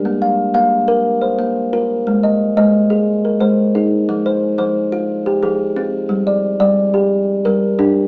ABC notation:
X:1
M:12/8
L:1/8
Q:3/8=119
K:Bbmix
V:1 name="Kalimba"
G f2 f3 z c3 B2- | B e2 e3 z B c2 A2- | A c2 c3 z G A2 F2- | F d2 d3 z2 B2 G2 |]
V:2 name="Kalimba"
B,2 z B,2 B2 z B,2 F2 | A,2 z A,2 A2 z A,2 E2 | F,2 z F,2 F2 z F,2 C2 | G,2 z G,2 G2 z G,2 D2 |]